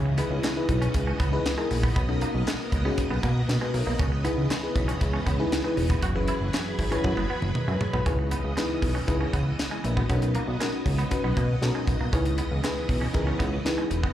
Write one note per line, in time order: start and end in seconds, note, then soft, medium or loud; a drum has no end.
0.00 0.21 C#2 loud
0.00 1.94 C#3 medium
0.00 1.92 E3 medium
0.00 5.99 B3 medium
0.00 5.99 D#5 medium
0.06 muted clean electric guitar stroke soft
0.18 0.25 B3 medium
0.18 0.48 D#4 medium
0.18 0.48 E4 medium
0.18 0.48 G#4 medium
0.18 0.48 B4 loud
0.18 closed hi-hat medium
0.30 0.40 C#2 loud
0.43 0.51 G#3 medium
0.43 snare loud
0.43 clap medium
0.43 closed hi-hat medium
0.56 1.16 D#4 medium
0.56 1.16 E4 medium
0.56 1.16 G#4 medium
0.56 1.16 B4 medium
0.69 0.88 B1 medium
0.69 muted clean electric guitar stroke soft
0.69 kick medium
0.69 closed hi-hat medium
0.82 0.89 C#4 medium
0.82 closed hi-hat medium
0.94 1.13 C#2 loud
0.94 muted clean electric guitar stroke medium
0.94 kick loud
0.94 closed hi-hat loud
1.07 1.14 C#4 medium
1.20 1.39 C#2 medium
1.20 1.27 B3 medium
1.20 kick medium
1.20 closed hi-hat medium
1.32 1.52 D#4 loud
1.32 1.52 E4 loud
1.32 1.52 G#4 medium
1.32 1.53 B4 loud
1.46 snare loud
1.46 clap medium
1.46 closed hi-hat medium
1.58 1.65 G#3 medium
1.58 1.96 D#4 medium
1.58 1.96 E4 medium
1.58 1.96 G#4 medium
1.58 1.96 A#4 loud
1.71 1.90 A#1 medium
1.71 muted clean electric guitar stroke soft
1.71 open hi-hat medium
1.83 1.91 B3 medium
1.83 kick loud
1.96 2.24 B1 loud
1.96 3.97 A#3 medium
1.96 2.03 B3 medium
1.96 kick loud
1.96 closed hi-hat medium
2.08 2.68 C#4 medium
2.08 2.68 D#4 medium
2.08 2.68 F#4 medium
2.08 2.15 A4 medium
2.08 muted clean electric guitar stroke soft
2.15 2.72 A#4 medium
2.21 2.29 A#3 medium
2.21 closed hi-hat medium
2.34 2.44 B1 loud
2.47 2.54 G#3 medium
2.47 snare loud
2.47 clap loud
2.47 closed hi-hat medium
2.72 2.91 C#2 medium
2.72 muted clean electric guitar stroke soft
2.72 kick medium
2.72 closed hi-hat medium
2.85 2.92 B3 medium
2.85 3.15 C#4 loud
2.85 3.15 D#4 medium
2.85 3.15 F#4 medium
2.85 3.15 G#4 loud
2.98 muted clean electric guitar stroke soft
2.98 kick loud
2.98 closed hi-hat loud
3.10 3.20 B1 medium
3.10 3.18 B3 medium
3.23 3.42 B2 loud
3.23 3.30 A#3 medium
3.23 kick loud
3.23 closed hi-hat medium
3.49 3.58 B2 loud
3.49 3.61 D#4 medium
3.49 3.61 A#4 medium
3.49 snare loud
3.49 clap medium
3.49 closed hi-hat medium
3.61 3.69 G#3 medium
3.61 3.73 F#4 medium
3.61 3.73 B4 medium
3.74 3.83 B1 loud
3.74 3.86 D#4 medium
3.74 3.86 A#4 medium
3.74 muted clean electric guitar stroke soft
3.74 open hi-hat medium
3.86 3.96 B1 medium
3.86 3.94 A#3 medium
3.86 4.11 A#4 medium
3.86 4.11 D#5 medium
3.99 4.28 C#2 loud
3.99 6.01 C#3 medium
3.99 8.02 E3 medium
3.99 4.07 C#4 medium
3.99 kick loud
3.99 closed hi-hat medium
4.12 muted clean electric guitar stroke soft
4.24 4.32 B3 medium
4.24 4.54 D#4 medium
4.24 4.54 E4 medium
4.24 4.55 G#4 medium
4.24 4.55 B4 loud
4.24 closed hi-hat medium
4.38 4.47 C#2 loud
4.50 4.58 G#3 medium
4.50 snare loud
4.50 clap medium
4.50 closed hi-hat medium
4.63 5.23 D#4 medium
4.63 5.23 E4 medium
4.63 5.23 G#4 medium
4.63 5.23 B4 medium
4.76 4.94 B1 medium
4.76 muted clean electric guitar stroke soft
4.76 kick loud
4.76 closed hi-hat medium
4.88 4.95 C#4 medium
4.88 closed hi-hat medium
5.01 5.20 C#2 medium
5.01 muted clean electric guitar stroke soft
5.01 kick loud
5.01 closed hi-hat medium
5.13 5.21 C#4 medium
5.26 5.45 C#2 loud
5.26 5.34 B3 medium
5.26 kick medium
5.26 closed hi-hat medium
5.39 5.59 D#4 loud
5.39 5.59 E4 medium
5.39 5.59 G#4 loud
5.39 5.59 B4 loud
5.52 snare loud
5.52 clap medium
5.52 closed hi-hat medium
5.64 5.72 G#3 medium
5.64 6.02 D#4 medium
5.64 6.02 E4 medium
5.64 6.03 G#4 medium
5.64 6.03 B4 loud
5.77 5.96 E1 loud
5.77 muted clean electric guitar stroke soft
5.77 open hi-hat medium
5.90 5.97 B3 medium
5.90 kick loud
5.90 closed hi-hat medium
6.02 6.31 F#1 loud
6.02 8.04 F#3 medium
6.02 6.10 F#4 medium
6.02 8.04 G#4 medium
6.02 8.04 B4 medium
6.02 kick loud
6.02 closed hi-hat medium
6.15 6.75 C#4 medium
6.15 6.75 E4 medium
6.15 6.75 G#4 medium
6.15 6.75 B4 loud
6.15 muted clean electric guitar stroke soft
6.28 6.35 E4 medium
6.28 closed hi-hat medium
6.41 6.50 F#1 loud
6.53 6.61 C#4 medium
6.53 snare loud
6.53 clap loud
6.53 closed hi-hat medium
6.79 6.98 G#1 medium
6.79 muted clean electric guitar stroke soft
6.79 kick medium
6.79 open hi-hat medium
6.91 7.21 C#4 medium
6.91 6.99 C#4 medium
6.91 7.21 E4 medium
6.91 7.21 G#4 medium
6.91 7.22 B4 loud
6.91 closed hi-hat medium
7.04 7.14 F#2 loud
7.04 muted clean electric guitar stroke soft
7.04 kick loud
7.04 high tom medium
7.17 7.26 F#1 medium
7.17 7.24 B3 medium
7.17 high tom medium
7.30 7.37 B3 medium
7.30 7.54 F#4 medium
7.30 7.54 B4 medium
7.42 7.52 F#1 loud
7.42 mid tom medium
7.55 7.68 A#4 medium
7.55 7.68 D#5 medium
7.55 mid tom medium
7.68 7.77 F#2 medium
7.68 7.75 G#3 medium
7.68 7.80 B4 medium
7.68 7.80 E5 medium
7.81 7.93 G#4 medium
7.81 7.93 C#5 medium
7.81 muted clean electric guitar stroke soft
7.81 floor tom loud
7.93 8.03 B1 loud
7.93 8.01 B3 medium
7.93 8.18 F#4 medium
7.93 8.05 B4 medium
7.93 floor tom medium
8.06 8.34 C#2 loud
8.06 10.07 C#3 medium
8.06 10.07 E3 medium
8.06 12.09 B3 medium
8.06 8.13 C#4 medium
8.06 8.46 D#4 medium
8.06 8.46 E4 medium
8.06 8.46 G#4 medium
8.06 8.46 B4 loud
8.06 10.07 D#5 medium
8.06 kick loud
8.06 closed hi-hat medium
8.19 muted clean electric guitar stroke soft
8.31 8.39 B3 medium
8.31 closed hi-hat medium
8.44 8.54 C#2 medium
8.57 8.64 G#3 medium
8.57 8.97 D#4 medium
8.57 8.97 E4 medium
8.57 8.97 G#4 medium
8.57 8.97 B4 medium
8.57 snare loud
8.57 clap medium
8.57 closed hi-hat medium
8.82 9.01 B1 medium
8.82 muted clean electric guitar stroke soft
8.82 kick medium
8.82 open hi-hat medium
8.95 9.02 C#4 medium
9.07 9.27 C#2 medium
9.07 9.47 D#4 medium
9.07 9.47 E4 medium
9.07 9.48 G#4 medium
9.07 9.48 B4 loud
9.07 muted clean electric guitar stroke soft
9.07 kick medium
9.07 closed hi-hat medium
9.21 9.28 C#4 medium
9.33 9.52 C#2 medium
9.33 9.40 B3 medium
9.33 kick medium
9.33 closed hi-hat medium
9.59 snare loud
9.59 clap medium
9.59 closed hi-hat medium
9.71 9.79 G#3 medium
9.71 9.84 D#5 medium
9.71 9.83 G#5 medium
9.84 10.03 A#1 medium
9.84 9.96 B4 medium
9.84 9.96 E5 medium
9.84 muted clean electric guitar stroke soft
9.84 closed hi-hat medium
9.97 10.04 B3 medium
9.97 10.08 F#4 medium
9.97 10.21 B4 medium
9.97 kick medium
10.09 10.38 B1 loud
10.09 12.11 F#3 medium
10.09 10.17 B3 medium
10.09 10.49 C#4 medium
10.09 10.15 D4 medium
10.09 10.49 F#4 medium
10.09 10.49 A#4 medium
10.09 14.12 D#5 medium
10.09 kick loud
10.09 closed hi-hat medium
10.15 10.52 D#4 medium
10.22 muted clean electric guitar stroke soft
10.22 closed hi-hat medium
10.35 10.42 A#3 medium
10.35 closed hi-hat medium
10.47 10.57 B1 loud
10.60 10.68 G#3 medium
10.60 11.00 C#4 medium
10.60 11.00 D#4 medium
10.60 11.00 F#4 medium
10.60 11.00 A#4 loud
10.60 snare loud
10.60 clap medium
10.60 closed hi-hat medium
10.86 11.05 C#2 medium
10.86 muted clean electric guitar stroke soft
10.86 kick medium
10.86 open hi-hat medium
10.98 11.06 B3 medium
10.98 closed hi-hat medium
11.11 11.51 C#4 medium
11.11 11.51 D#4 medium
11.11 11.51 F#4 medium
11.11 11.51 B4 loud
11.11 muted clean electric guitar stroke soft
11.11 kick loud
11.11 closed hi-hat medium
11.24 11.33 B1 medium
11.24 11.31 B3 medium
11.37 11.56 B2 medium
11.37 11.44 A#3 medium
11.37 kick loud
11.37 closed hi-hat medium
11.61 11.71 B2 loud
11.61 12.02 C#4 medium
11.61 12.02 D#4 medium
11.61 12.02 F#4 medium
11.61 11.68 A4 medium
11.61 snare loud
11.61 clap medium
11.61 closed hi-hat medium
11.68 12.05 A#4 loud
11.75 11.82 G#3 medium
11.87 11.97 B1 loud
11.87 muted clean electric guitar stroke soft
11.87 kick loud
11.87 closed hi-hat medium
12.00 12.10 B1 medium
12.00 12.08 A#3 medium
12.12 12.41 C#2 loud
12.12 14.13 C#3 medium
12.12 14.13 E3 medium
12.12 14.13 B3 medium
12.12 12.20 C#4 medium
12.12 12.52 D#4 medium
12.12 12.52 E4 medium
12.12 12.53 G#4 medium
12.12 12.53 B4 medium
12.12 kick loud
12.12 closed hi-hat medium
12.25 muted clean electric guitar stroke soft
12.25 closed hi-hat medium
12.38 12.46 B3 medium
12.38 closed hi-hat medium
12.51 12.61 C#2 loud
12.63 12.71 G#3 medium
12.63 13.03 D#4 medium
12.63 13.03 E4 medium
12.63 13.04 G#4 medium
12.63 13.04 B4 medium
12.63 snare loud
12.63 clap loud
12.63 closed hi-hat medium
12.89 13.08 B1 medium
12.89 muted clean electric guitar stroke soft
12.89 kick medium
12.89 open hi-hat medium
13.01 13.09 C#4 medium
13.13 13.33 C#2 medium
13.13 13.54 D#4 medium
13.13 13.54 E4 medium
13.13 13.54 G#4 medium
13.13 13.54 A#4 loud
13.13 muted clean electric guitar stroke soft
13.13 kick loud
13.13 closed hi-hat medium
13.27 13.34 C#4 medium
13.39 13.59 C#2 medium
13.39 13.47 B3 medium
13.39 kick medium
13.39 closed hi-hat medium
13.65 14.05 D#4 medium
13.65 14.05 E4 medium
13.65 14.05 G#4 medium
13.65 14.05 B4 loud
13.65 snare loud
13.65 clap medium
13.65 closed hi-hat medium
13.78 13.85 G#3 medium
13.90 14.09 E1 medium
13.90 muted clean electric guitar stroke soft
13.90 closed hi-hat medium
14.03 14.11 B3 medium
14.03 kick medium